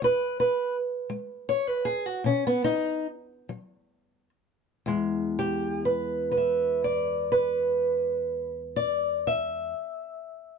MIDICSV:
0, 0, Header, 1, 2, 480
1, 0, Start_track
1, 0, Tempo, 723764
1, 25, Time_signature, 12, 3, 24, 8
1, 986, Tempo, 770218
1, 1466, Tempo, 810811
1, 1946, Tempo, 862069
1, 2426, Tempo, 928793
1, 2906, Tempo, 964630
1, 5756, End_track
2, 0, Start_track
2, 0, Title_t, "Steel-string acoustic guitar"
2, 0, Program_c, 0, 25
2, 12, Note_on_c, 0, 40, 83
2, 27, Note_on_c, 0, 71, 104
2, 256, Note_off_c, 0, 71, 0
2, 264, Note_on_c, 0, 71, 110
2, 443, Note_off_c, 0, 40, 0
2, 500, Note_off_c, 0, 71, 0
2, 727, Note_on_c, 0, 56, 69
2, 987, Note_on_c, 0, 73, 101
2, 1102, Note_off_c, 0, 73, 0
2, 1102, Note_on_c, 0, 71, 109
2, 1169, Note_off_c, 0, 56, 0
2, 1212, Note_on_c, 0, 68, 97
2, 1222, Note_off_c, 0, 71, 0
2, 1341, Note_off_c, 0, 68, 0
2, 1341, Note_on_c, 0, 66, 102
2, 1457, Note_on_c, 0, 47, 69
2, 1465, Note_off_c, 0, 66, 0
2, 1468, Note_on_c, 0, 61, 110
2, 1584, Note_off_c, 0, 61, 0
2, 1590, Note_on_c, 0, 59, 96
2, 1693, Note_off_c, 0, 59, 0
2, 1695, Note_on_c, 0, 63, 120
2, 1892, Note_off_c, 0, 47, 0
2, 1942, Note_off_c, 0, 63, 0
2, 2181, Note_on_c, 0, 54, 66
2, 2614, Note_off_c, 0, 54, 0
2, 2906, Note_on_c, 0, 40, 72
2, 2915, Note_on_c, 0, 56, 70
2, 3169, Note_on_c, 0, 67, 85
2, 3391, Note_off_c, 0, 67, 0
2, 3400, Note_on_c, 0, 71, 83
2, 3625, Note_off_c, 0, 71, 0
2, 3631, Note_on_c, 0, 71, 73
2, 3660, Note_on_c, 0, 76, 66
2, 3891, Note_off_c, 0, 76, 0
2, 3893, Note_on_c, 0, 74, 81
2, 4124, Note_off_c, 0, 71, 0
2, 4130, Note_on_c, 0, 71, 90
2, 4532, Note_off_c, 0, 74, 0
2, 4770, Note_off_c, 0, 71, 0
2, 4849, Note_on_c, 0, 74, 87
2, 5100, Note_off_c, 0, 74, 0
2, 5102, Note_on_c, 0, 76, 99
2, 5330, Note_off_c, 0, 40, 0
2, 5339, Note_off_c, 0, 56, 0
2, 5737, Note_off_c, 0, 76, 0
2, 5756, End_track
0, 0, End_of_file